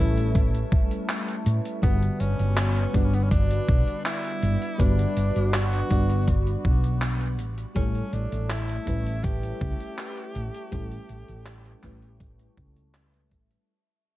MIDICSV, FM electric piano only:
0, 0, Header, 1, 2, 480
1, 0, Start_track
1, 0, Tempo, 740741
1, 1187, Time_signature, 4, 2, 24, 8
1, 9181, End_track
2, 0, Start_track
2, 0, Title_t, "FM electric piano"
2, 0, Program_c, 0, 5
2, 0, Control_c, 0, 64, 127
2, 0, Note_on_c, 0, 55, 85
2, 0, Note_on_c, 0, 57, 82
2, 0, Note_on_c, 0, 61, 78
2, 0, Note_on_c, 0, 64, 79
2, 0, Note_on_c, 0, 69, 106
2, 0, Note_on_c, 0, 71, 97
2, 1156, Note_off_c, 0, 55, 0
2, 1158, Note_off_c, 0, 57, 0
2, 1161, Note_off_c, 0, 61, 0
2, 1164, Note_off_c, 0, 64, 0
2, 1166, Note_off_c, 0, 71, 0
2, 1179, Note_on_c, 0, 55, 96
2, 1184, Note_on_c, 0, 59, 88
2, 1188, Note_on_c, 0, 50, 86
2, 1193, Note_on_c, 0, 66, 86
2, 1196, Note_off_c, 0, 69, 0
2, 1196, Control_c, 0, 64, 0
2, 1198, Note_on_c, 0, 71, 103
2, 1298, Control_c, 0, 64, 127
2, 1876, Note_off_c, 0, 55, 0
2, 1878, Note_off_c, 0, 59, 0
2, 1880, Note_off_c, 0, 50, 0
2, 1883, Note_off_c, 0, 66, 0
2, 1885, Note_off_c, 0, 71, 0
2, 1900, Note_on_c, 0, 55, 84
2, 1905, Note_on_c, 0, 59, 78
2, 1910, Note_on_c, 0, 62, 81
2, 1914, Note_on_c, 0, 66, 82
2, 1920, Note_on_c, 0, 74, 96
2, 3076, Note_off_c, 0, 55, 0
2, 3079, Note_off_c, 0, 59, 0
2, 3081, Note_off_c, 0, 62, 0
2, 3083, Note_off_c, 0, 66, 0
2, 3086, Note_off_c, 0, 74, 0
2, 3098, Note_on_c, 0, 55, 94
2, 3103, Note_on_c, 0, 59, 87
2, 3107, Note_on_c, 0, 62, 89
2, 3112, Note_on_c, 0, 66, 87
2, 3116, Note_on_c, 0, 71, 108
2, 3795, Note_off_c, 0, 55, 0
2, 3797, Note_off_c, 0, 59, 0
2, 3800, Note_off_c, 0, 62, 0
2, 3802, Note_off_c, 0, 66, 0
2, 3804, Note_off_c, 0, 71, 0
2, 3818, Note_on_c, 0, 55, 88
2, 3823, Note_on_c, 0, 59, 81
2, 3828, Note_on_c, 0, 62, 79
2, 3833, Note_on_c, 0, 66, 79
2, 3837, Note_on_c, 0, 74, 94
2, 4769, Note_off_c, 0, 55, 0
2, 4771, Note_off_c, 0, 59, 0
2, 4774, Note_off_c, 0, 62, 0
2, 4776, Note_off_c, 0, 66, 0
2, 4779, Note_off_c, 0, 74, 0
2, 4796, Control_c, 0, 64, 0
2, 4927, Control_c, 0, 64, 127
2, 5019, Note_on_c, 0, 55, 95
2, 5024, Note_on_c, 0, 57, 89
2, 5029, Note_on_c, 0, 73, 87
2, 5033, Note_on_c, 0, 64, 88
2, 5038, Note_on_c, 0, 69, 105
2, 5715, Note_off_c, 0, 55, 0
2, 5718, Note_off_c, 0, 57, 0
2, 5721, Note_off_c, 0, 73, 0
2, 5723, Note_off_c, 0, 64, 0
2, 5725, Note_off_c, 0, 69, 0
2, 5738, Note_on_c, 0, 55, 89
2, 5743, Note_on_c, 0, 57, 81
2, 5748, Note_on_c, 0, 61, 81
2, 5753, Note_on_c, 0, 64, 78
2, 5758, Note_on_c, 0, 71, 96
2, 6915, Note_off_c, 0, 55, 0
2, 6917, Note_off_c, 0, 57, 0
2, 6920, Note_off_c, 0, 61, 0
2, 6922, Note_off_c, 0, 64, 0
2, 6925, Note_off_c, 0, 71, 0
2, 6940, Note_on_c, 0, 55, 100
2, 6944, Note_on_c, 0, 57, 89
2, 6948, Note_on_c, 0, 61, 89
2, 6954, Note_on_c, 0, 64, 88
2, 6959, Note_on_c, 0, 69, 105
2, 7636, Note_off_c, 0, 55, 0
2, 7638, Note_off_c, 0, 57, 0
2, 7640, Note_off_c, 0, 61, 0
2, 7643, Note_off_c, 0, 64, 0
2, 7646, Note_off_c, 0, 69, 0
2, 7660, Note_on_c, 0, 55, 88
2, 7665, Note_on_c, 0, 57, 80
2, 7670, Note_on_c, 0, 61, 82
2, 7674, Note_on_c, 0, 64, 79
2, 7678, Note_on_c, 0, 71, 96
2, 8836, Note_off_c, 0, 55, 0
2, 8839, Note_off_c, 0, 57, 0
2, 8841, Note_off_c, 0, 61, 0
2, 8843, Note_off_c, 0, 64, 0
2, 8845, Note_off_c, 0, 71, 0
2, 8875, Control_c, 0, 64, 0
2, 9181, End_track
0, 0, End_of_file